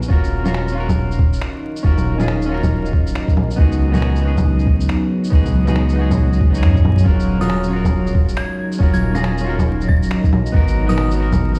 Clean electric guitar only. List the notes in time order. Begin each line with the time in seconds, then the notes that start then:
Already playing: A#4
0.08 C#4 F4 F#4
0.13 A#4
0.44 C#4 F4 F#4 A#4
0.72 C#4 F4
0.77 F#4 A#4
1.83 C#4 F4 F#4
1.87 A#4
2.18 C#4 F4 G#4
2.46 C#4 F4
2.52 F#4 A#4
3.56 B3 D#4 F#4
3.61 G#4
3.92 B3 D#4 F#4 G#4
4.19 B3 D#4
4.25 F#4 G#4
5.30 B3 D#4 F#4
5.35 G#4
5.66 B3 D#4 F#4 G#4
5.93 B3 D#4
5.99 F#4 G#4
6.50 B3 D#4
6.55 F#4 G#4
7.04 C#4 F4 F#4 A#4
7.39 C#4 F4 F#4 A#4
7.68 C#4 F4
7.73 F#4 A#4
8.79 C#4 F4 F#4 A#4
9.13 C#4 F4
9.17 G#4
9.41 C#4 F4
9.47 F#4 A#4
10.52 B3 D#4 F#4
10.56 A#4
10.87 B3 D#4 F#4
10.91 A#4
11.14 B3 D#4
11.20 F#4 A#4